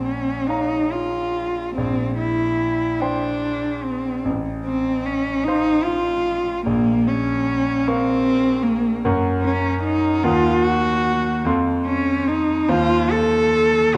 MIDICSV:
0, 0, Header, 1, 3, 480
1, 0, Start_track
1, 0, Key_signature, -5, "minor"
1, 0, Tempo, 859599
1, 988, Time_signature, 6, 3, 24, 8
1, 988, Tempo, 827586
1, 2428, Tempo, 800000
1, 6268, Tempo, 826446
1, 8196, End_track
2, 0, Start_track
2, 0, Title_t, "Grand piano"
2, 0, Program_c, 0, 0
2, 0, Control_c, 0, 64, 127
2, 0, Note_on_c, 0, 34, 30
2, 249, Note_off_c, 0, 34, 0
2, 273, Note_on_c, 0, 73, 27
2, 275, Note_on_c, 0, 77, 24
2, 279, Note_on_c, 0, 82, 28
2, 966, Note_off_c, 0, 73, 0
2, 967, Note_off_c, 0, 77, 0
2, 969, Note_off_c, 0, 82, 0
2, 991, Note_on_c, 0, 34, 35
2, 997, Control_c, 0, 64, 0
2, 1101, Control_c, 0, 64, 127
2, 1686, Note_off_c, 0, 34, 0
2, 1711, Note_on_c, 0, 72, 27
2, 1712, Note_on_c, 0, 79, 28
2, 1715, Note_on_c, 0, 84, 31
2, 2408, Note_off_c, 0, 72, 0
2, 2409, Note_off_c, 0, 79, 0
2, 2410, Note_off_c, 0, 84, 0
2, 2427, Note_on_c, 0, 33, 40
2, 2440, Control_c, 0, 64, 0
2, 2529, Control_c, 0, 64, 127
2, 3136, Note_off_c, 0, 33, 0
2, 3162, Note_on_c, 0, 72, 33
2, 3164, Note_on_c, 0, 77, 35
2, 3169, Note_on_c, 0, 84, 37
2, 3850, Note_off_c, 0, 72, 0
2, 3851, Note_off_c, 0, 77, 0
2, 3853, Note_off_c, 0, 84, 0
2, 3873, Note_on_c, 0, 34, 43
2, 3882, Control_c, 0, 64, 0
2, 3963, Control_c, 0, 64, 127
2, 4577, Note_off_c, 0, 34, 0
2, 4603, Note_on_c, 0, 70, 39
2, 4604, Note_on_c, 0, 77, 38
2, 4604, Note_on_c, 0, 85, 40
2, 5280, Note_off_c, 0, 70, 0
2, 5281, Note_off_c, 0, 77, 0
2, 5281, Note_off_c, 0, 85, 0
2, 5305, Note_on_c, 0, 70, 37
2, 5307, Note_on_c, 0, 42, 53
2, 5308, Note_on_c, 0, 78, 40
2, 5311, Control_c, 0, 64, 0
2, 5312, Note_on_c, 0, 85, 38
2, 5413, Control_c, 0, 64, 127
2, 6001, Note_off_c, 0, 70, 0
2, 6002, Note_off_c, 0, 78, 0
2, 6004, Note_off_c, 0, 42, 0
2, 6004, Note_off_c, 0, 85, 0
2, 6018, Note_on_c, 0, 39, 53
2, 6023, Note_on_c, 0, 70, 39
2, 6023, Note_on_c, 0, 78, 39
2, 6027, Note_on_c, 0, 87, 39
2, 6032, Control_c, 0, 64, 0
2, 6128, Control_c, 0, 64, 127
2, 6719, Note_off_c, 0, 39, 0
2, 6720, Note_off_c, 0, 70, 0
2, 6720, Note_off_c, 0, 78, 0
2, 6722, Note_off_c, 0, 87, 0
2, 6730, Note_on_c, 0, 41, 51
2, 6736, Note_on_c, 0, 69, 38
2, 6736, Note_on_c, 0, 77, 41
2, 6741, Note_on_c, 0, 84, 38
2, 6753, Control_c, 0, 64, 0
2, 6845, Control_c, 0, 64, 127
2, 7425, Note_off_c, 0, 41, 0
2, 7426, Note_off_c, 0, 69, 0
2, 7426, Note_off_c, 0, 77, 0
2, 7429, Note_off_c, 0, 84, 0
2, 7450, Note_on_c, 0, 39, 57
2, 7450, Note_on_c, 0, 72, 40
2, 7454, Note_on_c, 0, 77, 41
2, 7457, Note_on_c, 0, 84, 38
2, 7463, Control_c, 0, 64, 0
2, 7543, Control_c, 0, 64, 127
2, 8161, Note_off_c, 0, 72, 0
2, 8162, Note_off_c, 0, 39, 0
2, 8163, Note_off_c, 0, 77, 0
2, 8164, Note_off_c, 0, 84, 0
2, 8178, Note_on_c, 0, 37, 53
2, 8195, Control_c, 0, 64, 0
2, 8196, Note_off_c, 0, 37, 0
2, 8196, End_track
3, 0, Start_track
3, 0, Title_t, "Cello"
3, 0, Program_c, 1, 42
3, 28, Note_on_c, 1, 61, 38
3, 264, Note_on_c, 1, 63, 47
3, 272, Note_off_c, 1, 61, 0
3, 518, Note_on_c, 1, 65, 44
3, 526, Note_off_c, 1, 63, 0
3, 976, Note_off_c, 1, 65, 0
3, 979, Note_on_c, 1, 60, 43
3, 1218, Note_off_c, 1, 60, 0
3, 1223, Note_on_c, 1, 64, 43
3, 1704, Note_on_c, 1, 62, 52
3, 1713, Note_off_c, 1, 64, 0
3, 2186, Note_on_c, 1, 60, 43
3, 2195, Note_off_c, 1, 62, 0
3, 2427, Note_off_c, 1, 60, 0
3, 2667, Note_on_c, 1, 60, 49
3, 2910, Note_on_c, 1, 61, 51
3, 2919, Note_off_c, 1, 60, 0
3, 3141, Note_on_c, 1, 63, 63
3, 3150, Note_off_c, 1, 61, 0
3, 3383, Note_on_c, 1, 65, 59
3, 3392, Note_off_c, 1, 63, 0
3, 3865, Note_off_c, 1, 65, 0
3, 3873, Note_on_c, 1, 58, 60
3, 4122, Note_on_c, 1, 61, 55
3, 4131, Note_off_c, 1, 58, 0
3, 4603, Note_on_c, 1, 60, 71
3, 4612, Note_off_c, 1, 61, 0
3, 5056, Note_on_c, 1, 58, 56
3, 5065, Note_off_c, 1, 60, 0
3, 5297, Note_off_c, 1, 58, 0
3, 5531, Note_on_c, 1, 61, 55
3, 5760, Note_off_c, 1, 61, 0
3, 5779, Note_on_c, 1, 63, 61
3, 6018, Note_on_c, 1, 65, 72
3, 6027, Note_off_c, 1, 63, 0
3, 6261, Note_on_c, 1, 66, 60
3, 6270, Note_off_c, 1, 65, 0
3, 6740, Note_off_c, 1, 66, 0
3, 6972, Note_on_c, 1, 61, 60
3, 7214, Note_on_c, 1, 63, 58
3, 7223, Note_off_c, 1, 61, 0
3, 7452, Note_on_c, 1, 65, 76
3, 7461, Note_off_c, 1, 63, 0
3, 7699, Note_on_c, 1, 69, 68
3, 7708, Note_off_c, 1, 65, 0
3, 8193, Note_off_c, 1, 69, 0
3, 8196, End_track
0, 0, End_of_file